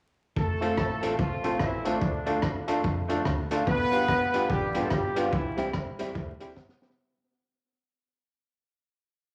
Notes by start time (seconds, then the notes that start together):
0.36 F1 A3 A4, kick
0.61 A3 C4 F4 A4, closed hi-hat
0.77 A1, muted clean electric guitar stroke, kick, cross-stick
1.02 A3 C4 F4 A4, closed hi-hat
1.19 C2 F3 F4, kick
1.44 A1 A3 C4 F4 A4, closed hi-hat
1.59 A1 E3 E4, kick, cross-stick
1.85 D3 A3 C4 D4 F4 A4, closed hi-hat
2.01 D2, kick
2.26 A3 D4 F4 A4, closed hi-hat
2.42 E2, muted clean electric guitar stroke, kick, cross-stick
2.68 A3 D4 F4 A4, closed hi-hat
2.84 F2, muted clean electric guitar stroke, kick
3.09 A3 D4 F4 A4, closed hi-hat
3.25 D2 F4 A4, kick, cross-stick
3.51 A3 D4 F4 A4, closed hi-hat
3.67 G1 B3 B4, kick
3.92 G3 B3 D4 F4 G4, closed hi-hat
4.08 F1, muted clean electric guitar stroke, kick, cross-stick
4.34 G3 B3 D4 F4 G4, closed hi-hat
4.50 A1 G3 G4, muted clean electric guitar stroke, kick
4.75 G1 G3 B3 D4 F4 G4, closed hi-hat
4.83 A3 A4
4.91 G1 G3 G4, kick, cross-stick
5.16 G3 B3 D4 F4 G4, closed hi-hat
5.26 F3 F4
5.33 C2 E3 E4, kick
5.57 G3 C4 E4 G4, closed hi-hat
5.73 E2, muted clean electric guitar stroke, kick, cross-stick
5.99 G3 C4 E4 G4, closed hi-hat
6.15 D2, muted clean electric guitar stroke, kick
6.40 C2 G3 C4 E4 G4, closed hi-hat
6.57 G1 E4 G4, kick, snare
6.69 snare
6.81 G3 C4 E4 G4, snare
6.90 snare